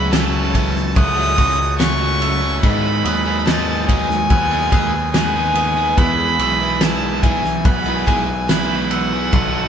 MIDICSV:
0, 0, Header, 1, 9, 480
1, 0, Start_track
1, 0, Tempo, 836820
1, 1511, Time_signature, 4, 2, 24, 8
1, 5552, End_track
2, 0, Start_track
2, 0, Title_t, "Glockenspiel"
2, 0, Program_c, 0, 9
2, 0, Note_on_c, 0, 88, 76
2, 74, Note_off_c, 0, 88, 0
2, 75, Note_on_c, 0, 92, 78
2, 554, Note_off_c, 0, 92, 0
2, 556, Note_on_c, 0, 90, 90
2, 1027, Note_off_c, 0, 90, 0
2, 1034, Note_on_c, 0, 90, 81
2, 1271, Note_on_c, 0, 88, 83
2, 1272, Note_off_c, 0, 90, 0
2, 1749, Note_on_c, 0, 87, 78
2, 1750, Note_off_c, 0, 88, 0
2, 2221, Note_off_c, 0, 87, 0
2, 2227, Note_on_c, 0, 87, 78
2, 2467, Note_on_c, 0, 92, 98
2, 2468, Note_off_c, 0, 87, 0
2, 2708, Note_off_c, 0, 92, 0
2, 2708, Note_on_c, 0, 87, 78
2, 2947, Note_on_c, 0, 90, 87
2, 2948, Note_off_c, 0, 87, 0
2, 3186, Note_on_c, 0, 87, 80
2, 3188, Note_off_c, 0, 90, 0
2, 3427, Note_off_c, 0, 87, 0
2, 3669, Note_on_c, 0, 88, 82
2, 3908, Note_on_c, 0, 92, 89
2, 3909, Note_off_c, 0, 88, 0
2, 4388, Note_on_c, 0, 90, 99
2, 4389, Note_off_c, 0, 92, 0
2, 4863, Note_off_c, 0, 90, 0
2, 4870, Note_on_c, 0, 90, 89
2, 5111, Note_on_c, 0, 88, 88
2, 5112, Note_off_c, 0, 90, 0
2, 5552, Note_off_c, 0, 88, 0
2, 5552, End_track
3, 0, Start_track
3, 0, Title_t, "Violin"
3, 0, Program_c, 1, 40
3, 0, Note_on_c, 1, 83, 109
3, 68, Note_on_c, 1, 81, 105
3, 76, Note_off_c, 1, 83, 0
3, 544, Note_on_c, 1, 87, 127
3, 552, Note_off_c, 1, 81, 0
3, 1021, Note_off_c, 1, 87, 0
3, 1025, Note_on_c, 1, 85, 112
3, 1484, Note_off_c, 1, 85, 0
3, 1501, Note_on_c, 1, 83, 109
3, 1981, Note_on_c, 1, 81, 107
3, 1989, Note_off_c, 1, 83, 0
3, 2218, Note_on_c, 1, 80, 120
3, 2226, Note_off_c, 1, 81, 0
3, 2936, Note_off_c, 1, 80, 0
3, 2939, Note_on_c, 1, 80, 106
3, 3426, Note_on_c, 1, 83, 114
3, 3434, Note_off_c, 1, 80, 0
3, 3905, Note_on_c, 1, 81, 101
3, 3914, Note_off_c, 1, 83, 0
3, 4141, Note_on_c, 1, 80, 99
3, 4150, Note_off_c, 1, 81, 0
3, 4387, Note_on_c, 1, 83, 110
3, 4396, Note_off_c, 1, 80, 0
3, 4627, Note_on_c, 1, 80, 94
3, 4636, Note_off_c, 1, 83, 0
3, 4867, Note_on_c, 1, 83, 103
3, 4875, Note_off_c, 1, 80, 0
3, 5108, Note_on_c, 1, 78, 93
3, 5116, Note_off_c, 1, 83, 0
3, 5552, Note_off_c, 1, 78, 0
3, 5552, End_track
4, 0, Start_track
4, 0, Title_t, "Ambient pad"
4, 0, Program_c, 2, 92
4, 0, Note_on_c, 2, 66, 84
4, 0, Note_on_c, 2, 73, 69
4, 0, Note_on_c, 2, 76, 74
4, 0, Note_on_c, 2, 81, 93
4, 1494, Note_off_c, 2, 66, 0
4, 1494, Note_off_c, 2, 81, 0
4, 1495, Note_off_c, 2, 73, 0
4, 1495, Note_off_c, 2, 76, 0
4, 1511, Note_on_c, 2, 56, 77
4, 1511, Note_on_c, 2, 71, 74
4, 1512, Note_on_c, 2, 78, 72
4, 1513, Note_on_c, 2, 83, 85
4, 3410, Note_off_c, 2, 56, 0
4, 3410, Note_off_c, 2, 78, 0
4, 3426, Note_on_c, 2, 56, 84
4, 3431, Note_on_c, 2, 76, 70
4, 5333, Note_off_c, 2, 56, 0
4, 5335, Note_off_c, 2, 76, 0
4, 5349, Note_on_c, 2, 69, 87
4, 5351, Note_on_c, 2, 78, 79
4, 5552, Note_off_c, 2, 69, 0
4, 5552, Note_off_c, 2, 71, 0
4, 5552, Note_off_c, 2, 78, 0
4, 5552, Note_off_c, 2, 83, 0
4, 5552, End_track
5, 0, Start_track
5, 0, Title_t, "Overdriven electric guitar"
5, 0, Program_c, 3, 29
5, 0, Note_on_c, 3, 42, 91
5, 0, Note_on_c, 3, 49, 95
5, 0, Note_on_c, 3, 54, 58
5, 0, Note_on_c, 3, 57, 68
5, 0, Note_on_c, 3, 61, 76
5, 0, Note_on_c, 3, 66, 73
5, 67, Note_off_c, 3, 42, 0
5, 71, Note_off_c, 3, 49, 0
5, 74, Note_on_c, 3, 42, 90
5, 75, Note_off_c, 3, 57, 0
5, 77, Note_off_c, 3, 61, 0
5, 78, Note_on_c, 3, 49, 87
5, 79, Note_off_c, 3, 54, 0
5, 81, Note_on_c, 3, 54, 90
5, 82, Note_on_c, 3, 57, 97
5, 83, Note_off_c, 3, 66, 0
5, 84, Note_on_c, 3, 61, 104
5, 85, Note_on_c, 3, 66, 102
5, 313, Note_off_c, 3, 57, 0
5, 314, Note_off_c, 3, 54, 0
5, 316, Note_off_c, 3, 61, 0
5, 316, Note_on_c, 3, 54, 74
5, 320, Note_on_c, 3, 57, 81
5, 323, Note_on_c, 3, 61, 94
5, 324, Note_off_c, 3, 66, 0
5, 327, Note_on_c, 3, 66, 87
5, 430, Note_off_c, 3, 66, 0
5, 432, Note_off_c, 3, 61, 0
5, 434, Note_off_c, 3, 54, 0
5, 435, Note_off_c, 3, 57, 0
5, 553, Note_off_c, 3, 42, 0
5, 555, Note_off_c, 3, 49, 0
5, 670, Note_on_c, 3, 66, 73
5, 676, Note_on_c, 3, 61, 73
5, 679, Note_on_c, 3, 57, 72
5, 682, Note_on_c, 3, 54, 66
5, 781, Note_off_c, 3, 54, 0
5, 786, Note_off_c, 3, 57, 0
5, 787, Note_on_c, 3, 54, 75
5, 791, Note_off_c, 3, 61, 0
5, 793, Note_on_c, 3, 57, 85
5, 794, Note_off_c, 3, 66, 0
5, 798, Note_on_c, 3, 61, 92
5, 801, Note_on_c, 3, 66, 94
5, 907, Note_off_c, 3, 66, 0
5, 908, Note_off_c, 3, 61, 0
5, 909, Note_off_c, 3, 57, 0
5, 910, Note_off_c, 3, 54, 0
5, 1028, Note_on_c, 3, 42, 90
5, 1029, Note_on_c, 3, 49, 89
5, 1030, Note_on_c, 3, 54, 101
5, 1033, Note_on_c, 3, 57, 100
5, 1035, Note_on_c, 3, 61, 96
5, 1038, Note_on_c, 3, 66, 96
5, 1140, Note_off_c, 3, 66, 0
5, 1145, Note_off_c, 3, 61, 0
5, 1147, Note_on_c, 3, 66, 72
5, 1148, Note_off_c, 3, 57, 0
5, 1149, Note_off_c, 3, 54, 0
5, 1151, Note_on_c, 3, 61, 74
5, 1155, Note_on_c, 3, 57, 65
5, 1156, Note_on_c, 3, 54, 61
5, 1377, Note_off_c, 3, 66, 0
5, 1382, Note_off_c, 3, 61, 0
5, 1384, Note_on_c, 3, 66, 72
5, 1385, Note_off_c, 3, 57, 0
5, 1389, Note_off_c, 3, 42, 0
5, 1389, Note_off_c, 3, 49, 0
5, 1389, Note_off_c, 3, 54, 0
5, 1389, Note_on_c, 3, 61, 69
5, 1392, Note_on_c, 3, 57, 58
5, 1396, Note_on_c, 3, 54, 57
5, 1493, Note_off_c, 3, 66, 0
5, 1495, Note_off_c, 3, 61, 0
5, 1497, Note_off_c, 3, 57, 0
5, 1499, Note_off_c, 3, 54, 0
5, 1506, Note_on_c, 3, 44, 97
5, 1509, Note_on_c, 3, 51, 90
5, 1512, Note_on_c, 3, 56, 105
5, 1512, Note_on_c, 3, 59, 95
5, 1515, Note_on_c, 3, 63, 103
5, 1516, Note_on_c, 3, 68, 101
5, 1863, Note_off_c, 3, 68, 0
5, 1865, Note_on_c, 3, 68, 86
5, 1869, Note_off_c, 3, 63, 0
5, 1870, Note_off_c, 3, 59, 0
5, 1871, Note_on_c, 3, 63, 74
5, 1873, Note_on_c, 3, 59, 65
5, 1875, Note_off_c, 3, 56, 0
5, 1877, Note_on_c, 3, 56, 70
5, 1983, Note_off_c, 3, 44, 0
5, 1986, Note_off_c, 3, 51, 0
5, 1989, Note_on_c, 3, 44, 89
5, 1991, Note_off_c, 3, 56, 0
5, 1993, Note_off_c, 3, 59, 0
5, 1993, Note_on_c, 3, 51, 92
5, 1993, Note_on_c, 3, 56, 94
5, 1995, Note_on_c, 3, 59, 95
5, 1997, Note_off_c, 3, 63, 0
5, 1998, Note_off_c, 3, 68, 0
5, 1999, Note_on_c, 3, 63, 102
5, 2001, Note_on_c, 3, 68, 99
5, 2227, Note_off_c, 3, 56, 0
5, 2229, Note_on_c, 3, 56, 89
5, 2231, Note_off_c, 3, 59, 0
5, 2233, Note_off_c, 3, 63, 0
5, 2233, Note_on_c, 3, 59, 92
5, 2235, Note_off_c, 3, 68, 0
5, 2235, Note_on_c, 3, 63, 96
5, 2238, Note_on_c, 3, 68, 99
5, 2342, Note_off_c, 3, 68, 0
5, 2346, Note_off_c, 3, 56, 0
5, 2349, Note_off_c, 3, 63, 0
5, 2350, Note_off_c, 3, 59, 0
5, 2469, Note_off_c, 3, 44, 0
5, 2470, Note_off_c, 3, 51, 0
5, 2589, Note_on_c, 3, 68, 79
5, 2594, Note_on_c, 3, 63, 67
5, 2598, Note_on_c, 3, 59, 73
5, 2600, Note_on_c, 3, 56, 66
5, 2706, Note_off_c, 3, 56, 0
5, 2713, Note_off_c, 3, 59, 0
5, 2713, Note_on_c, 3, 56, 85
5, 2716, Note_on_c, 3, 59, 79
5, 2717, Note_off_c, 3, 68, 0
5, 2719, Note_off_c, 3, 63, 0
5, 2721, Note_on_c, 3, 63, 91
5, 2724, Note_on_c, 3, 68, 93
5, 2825, Note_off_c, 3, 68, 0
5, 2830, Note_off_c, 3, 56, 0
5, 2832, Note_off_c, 3, 59, 0
5, 2832, Note_off_c, 3, 63, 0
5, 2950, Note_on_c, 3, 44, 93
5, 2953, Note_on_c, 3, 51, 96
5, 2955, Note_on_c, 3, 56, 89
5, 2957, Note_on_c, 3, 63, 94
5, 2958, Note_on_c, 3, 59, 111
5, 2960, Note_on_c, 3, 68, 100
5, 3064, Note_off_c, 3, 68, 0
5, 3070, Note_on_c, 3, 68, 83
5, 3073, Note_off_c, 3, 63, 0
5, 3075, Note_on_c, 3, 63, 71
5, 3076, Note_off_c, 3, 59, 0
5, 3077, Note_off_c, 3, 56, 0
5, 3078, Note_on_c, 3, 59, 70
5, 3084, Note_on_c, 3, 56, 59
5, 3299, Note_off_c, 3, 68, 0
5, 3306, Note_on_c, 3, 68, 71
5, 3308, Note_off_c, 3, 63, 0
5, 3309, Note_off_c, 3, 44, 0
5, 3310, Note_on_c, 3, 63, 72
5, 3311, Note_off_c, 3, 51, 0
5, 3312, Note_off_c, 3, 56, 0
5, 3312, Note_off_c, 3, 59, 0
5, 3314, Note_on_c, 3, 59, 72
5, 3319, Note_on_c, 3, 56, 58
5, 3413, Note_off_c, 3, 68, 0
5, 3419, Note_off_c, 3, 56, 0
5, 3428, Note_on_c, 3, 52, 106
5, 3432, Note_off_c, 3, 59, 0
5, 3432, Note_on_c, 3, 56, 101
5, 3434, Note_on_c, 3, 59, 106
5, 3436, Note_off_c, 3, 63, 0
5, 3438, Note_on_c, 3, 64, 110
5, 3439, Note_on_c, 3, 68, 116
5, 3783, Note_off_c, 3, 68, 0
5, 3789, Note_off_c, 3, 64, 0
5, 3790, Note_on_c, 3, 68, 73
5, 3796, Note_on_c, 3, 64, 71
5, 3798, Note_off_c, 3, 59, 0
5, 3800, Note_on_c, 3, 59, 63
5, 3902, Note_off_c, 3, 52, 0
5, 3904, Note_off_c, 3, 56, 0
5, 3909, Note_on_c, 3, 52, 105
5, 3910, Note_off_c, 3, 64, 0
5, 3911, Note_off_c, 3, 68, 0
5, 3911, Note_on_c, 3, 56, 105
5, 3912, Note_off_c, 3, 59, 0
5, 3914, Note_on_c, 3, 59, 101
5, 3917, Note_on_c, 3, 64, 119
5, 3918, Note_on_c, 3, 68, 116
5, 4144, Note_off_c, 3, 56, 0
5, 4151, Note_on_c, 3, 56, 91
5, 4152, Note_off_c, 3, 64, 0
5, 4153, Note_off_c, 3, 59, 0
5, 4155, Note_on_c, 3, 59, 88
5, 4156, Note_off_c, 3, 68, 0
5, 4159, Note_on_c, 3, 64, 94
5, 4163, Note_on_c, 3, 68, 91
5, 4266, Note_off_c, 3, 64, 0
5, 4267, Note_off_c, 3, 68, 0
5, 4269, Note_off_c, 3, 56, 0
5, 4269, Note_off_c, 3, 59, 0
5, 4389, Note_off_c, 3, 52, 0
5, 4507, Note_on_c, 3, 68, 81
5, 4513, Note_on_c, 3, 64, 73
5, 4517, Note_on_c, 3, 59, 70
5, 4625, Note_off_c, 3, 59, 0
5, 4627, Note_on_c, 3, 56, 86
5, 4628, Note_off_c, 3, 64, 0
5, 4632, Note_on_c, 3, 59, 83
5, 4633, Note_off_c, 3, 68, 0
5, 4635, Note_on_c, 3, 64, 93
5, 4640, Note_on_c, 3, 68, 97
5, 4748, Note_off_c, 3, 68, 0
5, 4750, Note_off_c, 3, 64, 0
5, 4751, Note_off_c, 3, 56, 0
5, 4752, Note_off_c, 3, 59, 0
5, 4873, Note_on_c, 3, 52, 94
5, 4876, Note_on_c, 3, 56, 98
5, 4878, Note_on_c, 3, 59, 98
5, 4883, Note_on_c, 3, 64, 109
5, 4884, Note_on_c, 3, 68, 116
5, 4984, Note_off_c, 3, 68, 0
5, 4990, Note_off_c, 3, 64, 0
5, 4991, Note_on_c, 3, 68, 79
5, 4996, Note_off_c, 3, 59, 0
5, 4997, Note_on_c, 3, 64, 72
5, 5003, Note_on_c, 3, 59, 60
5, 5225, Note_off_c, 3, 68, 0
5, 5231, Note_off_c, 3, 64, 0
5, 5232, Note_on_c, 3, 68, 81
5, 5233, Note_off_c, 3, 52, 0
5, 5235, Note_off_c, 3, 56, 0
5, 5238, Note_off_c, 3, 59, 0
5, 5238, Note_on_c, 3, 64, 69
5, 5245, Note_on_c, 3, 59, 66
5, 5338, Note_off_c, 3, 68, 0
5, 5341, Note_off_c, 3, 64, 0
5, 5345, Note_off_c, 3, 59, 0
5, 5351, Note_on_c, 3, 47, 104
5, 5353, Note_on_c, 3, 51, 104
5, 5357, Note_on_c, 3, 54, 103
5, 5358, Note_on_c, 3, 59, 102
5, 5361, Note_on_c, 3, 63, 114
5, 5362, Note_on_c, 3, 69, 111
5, 5552, Note_off_c, 3, 47, 0
5, 5552, Note_off_c, 3, 51, 0
5, 5552, Note_off_c, 3, 54, 0
5, 5552, Note_off_c, 3, 59, 0
5, 5552, Note_off_c, 3, 63, 0
5, 5552, Note_off_c, 3, 69, 0
5, 5552, End_track
6, 0, Start_track
6, 0, Title_t, "Clean electric guitar"
6, 0, Program_c, 4, 27
6, 0, Note_on_c, 4, 42, 82
6, 0, Note_on_c, 4, 52, 74
6, 73, Note_on_c, 4, 61, 76
6, 306, Note_off_c, 4, 52, 0
6, 313, Note_on_c, 4, 52, 75
6, 552, Note_on_c, 4, 57, 79
6, 791, Note_on_c, 4, 66, 69
6, 794, Note_off_c, 4, 42, 0
6, 1025, Note_off_c, 4, 61, 0
6, 1031, Note_on_c, 4, 61, 73
6, 1264, Note_off_c, 4, 57, 0
6, 1271, Note_on_c, 4, 57, 80
6, 1508, Note_on_c, 4, 44, 79
6, 1510, Note_off_c, 4, 52, 0
6, 1510, Note_off_c, 4, 66, 0
6, 1511, Note_off_c, 4, 57, 0
6, 1511, Note_off_c, 4, 61, 0
6, 1748, Note_on_c, 4, 54, 71
6, 1989, Note_on_c, 4, 63, 79
6, 2220, Note_off_c, 4, 54, 0
6, 2227, Note_on_c, 4, 54, 73
6, 2468, Note_on_c, 4, 59, 75
6, 2707, Note_off_c, 4, 44, 0
6, 2709, Note_on_c, 4, 68, 70
6, 2946, Note_off_c, 4, 63, 0
6, 2949, Note_on_c, 4, 63, 79
6, 3185, Note_off_c, 4, 59, 0
6, 3187, Note_on_c, 4, 59, 76
6, 3427, Note_off_c, 4, 54, 0
6, 3429, Note_off_c, 4, 68, 0
6, 3430, Note_on_c, 4, 40, 80
6, 3447, Note_off_c, 4, 63, 0
6, 3669, Note_on_c, 4, 52, 73
6, 4141, Note_off_c, 4, 52, 0
6, 4147, Note_on_c, 4, 52, 78
6, 4386, Note_off_c, 4, 59, 0
6, 4388, Note_on_c, 4, 59, 80
6, 4630, Note_on_c, 4, 68, 74
6, 4631, Note_off_c, 4, 40, 0
6, 5105, Note_off_c, 4, 59, 0
6, 5112, Note_on_c, 4, 59, 78
6, 5352, Note_off_c, 4, 52, 0
6, 5352, Note_on_c, 4, 47, 81
6, 5353, Note_off_c, 4, 59, 0
6, 5353, Note_off_c, 4, 68, 0
6, 5552, Note_off_c, 4, 47, 0
6, 5552, End_track
7, 0, Start_track
7, 0, Title_t, "Picked electric bass"
7, 0, Program_c, 5, 34
7, 0, Note_on_c, 5, 37, 84
7, 532, Note_off_c, 5, 37, 0
7, 553, Note_on_c, 5, 37, 97
7, 773, Note_off_c, 5, 37, 0
7, 792, Note_on_c, 5, 37, 109
7, 1488, Note_off_c, 5, 37, 0
7, 1510, Note_on_c, 5, 44, 93
7, 1730, Note_off_c, 5, 44, 0
7, 1749, Note_on_c, 5, 39, 94
7, 2445, Note_off_c, 5, 39, 0
7, 2469, Note_on_c, 5, 39, 93
7, 2689, Note_off_c, 5, 39, 0
7, 2709, Note_on_c, 5, 39, 98
7, 3406, Note_off_c, 5, 39, 0
7, 3428, Note_on_c, 5, 40, 106
7, 3649, Note_off_c, 5, 40, 0
7, 3665, Note_on_c, 5, 35, 89
7, 4365, Note_off_c, 5, 35, 0
7, 4387, Note_on_c, 5, 35, 103
7, 4609, Note_off_c, 5, 35, 0
7, 4631, Note_on_c, 5, 35, 105
7, 5331, Note_off_c, 5, 35, 0
7, 5354, Note_on_c, 5, 35, 103
7, 5552, Note_off_c, 5, 35, 0
7, 5552, End_track
8, 0, Start_track
8, 0, Title_t, "Muted overdriven electric guitar strokes"
8, 437, Note_on_c, 9, 29, 59
8, 494, Note_off_c, 9, 29, 0
8, 914, Note_on_c, 9, 29, 46
8, 971, Note_off_c, 9, 29, 0
8, 2349, Note_on_c, 9, 29, 58
8, 2406, Note_off_c, 9, 29, 0
8, 2832, Note_on_c, 9, 29, 50
8, 2889, Note_off_c, 9, 29, 0
8, 4273, Note_on_c, 9, 29, 54
8, 4330, Note_off_c, 9, 29, 0
8, 4755, Note_on_c, 9, 29, 52
8, 4812, Note_off_c, 9, 29, 0
8, 5552, End_track
9, 0, Start_track
9, 0, Title_t, "Drums"
9, 73, Note_on_c, 9, 38, 112
9, 73, Note_on_c, 9, 51, 116
9, 131, Note_off_c, 9, 38, 0
9, 131, Note_off_c, 9, 51, 0
9, 314, Note_on_c, 9, 36, 91
9, 315, Note_on_c, 9, 51, 82
9, 371, Note_off_c, 9, 36, 0
9, 372, Note_off_c, 9, 51, 0
9, 433, Note_on_c, 9, 38, 35
9, 490, Note_off_c, 9, 38, 0
9, 551, Note_on_c, 9, 51, 116
9, 553, Note_on_c, 9, 36, 119
9, 609, Note_off_c, 9, 51, 0
9, 610, Note_off_c, 9, 36, 0
9, 791, Note_on_c, 9, 51, 83
9, 792, Note_on_c, 9, 36, 83
9, 848, Note_off_c, 9, 51, 0
9, 849, Note_off_c, 9, 36, 0
9, 1032, Note_on_c, 9, 38, 118
9, 1032, Note_on_c, 9, 51, 104
9, 1089, Note_off_c, 9, 38, 0
9, 1089, Note_off_c, 9, 51, 0
9, 1272, Note_on_c, 9, 51, 80
9, 1330, Note_off_c, 9, 51, 0
9, 1510, Note_on_c, 9, 51, 101
9, 1511, Note_on_c, 9, 36, 105
9, 1568, Note_off_c, 9, 36, 0
9, 1568, Note_off_c, 9, 51, 0
9, 1752, Note_on_c, 9, 51, 90
9, 1809, Note_off_c, 9, 51, 0
9, 1991, Note_on_c, 9, 38, 127
9, 1991, Note_on_c, 9, 51, 123
9, 2049, Note_off_c, 9, 38, 0
9, 2049, Note_off_c, 9, 51, 0
9, 2230, Note_on_c, 9, 36, 98
9, 2232, Note_on_c, 9, 51, 89
9, 2288, Note_off_c, 9, 36, 0
9, 2290, Note_off_c, 9, 51, 0
9, 2351, Note_on_c, 9, 38, 34
9, 2408, Note_off_c, 9, 38, 0
9, 2467, Note_on_c, 9, 51, 110
9, 2468, Note_on_c, 9, 36, 113
9, 2524, Note_off_c, 9, 51, 0
9, 2526, Note_off_c, 9, 36, 0
9, 2708, Note_on_c, 9, 36, 98
9, 2709, Note_on_c, 9, 51, 87
9, 2766, Note_off_c, 9, 36, 0
9, 2766, Note_off_c, 9, 51, 0
9, 2949, Note_on_c, 9, 38, 121
9, 2949, Note_on_c, 9, 51, 109
9, 3007, Note_off_c, 9, 38, 0
9, 3007, Note_off_c, 9, 51, 0
9, 3186, Note_on_c, 9, 51, 84
9, 3243, Note_off_c, 9, 51, 0
9, 3428, Note_on_c, 9, 36, 109
9, 3428, Note_on_c, 9, 51, 95
9, 3485, Note_off_c, 9, 36, 0
9, 3485, Note_off_c, 9, 51, 0
9, 3668, Note_on_c, 9, 51, 84
9, 3725, Note_off_c, 9, 51, 0
9, 3906, Note_on_c, 9, 38, 120
9, 3906, Note_on_c, 9, 51, 109
9, 3963, Note_off_c, 9, 38, 0
9, 3963, Note_off_c, 9, 51, 0
9, 4148, Note_on_c, 9, 36, 94
9, 4149, Note_on_c, 9, 51, 84
9, 4205, Note_off_c, 9, 36, 0
9, 4206, Note_off_c, 9, 51, 0
9, 4271, Note_on_c, 9, 38, 34
9, 4328, Note_off_c, 9, 38, 0
9, 4388, Note_on_c, 9, 36, 125
9, 4388, Note_on_c, 9, 51, 105
9, 4446, Note_off_c, 9, 36, 0
9, 4446, Note_off_c, 9, 51, 0
9, 4630, Note_on_c, 9, 36, 92
9, 4633, Note_on_c, 9, 51, 82
9, 4688, Note_off_c, 9, 36, 0
9, 4690, Note_off_c, 9, 51, 0
9, 4871, Note_on_c, 9, 38, 120
9, 4871, Note_on_c, 9, 51, 111
9, 4928, Note_off_c, 9, 38, 0
9, 4928, Note_off_c, 9, 51, 0
9, 5109, Note_on_c, 9, 51, 78
9, 5167, Note_off_c, 9, 51, 0
9, 5350, Note_on_c, 9, 51, 114
9, 5352, Note_on_c, 9, 36, 119
9, 5407, Note_off_c, 9, 51, 0
9, 5409, Note_off_c, 9, 36, 0
9, 5552, End_track
0, 0, End_of_file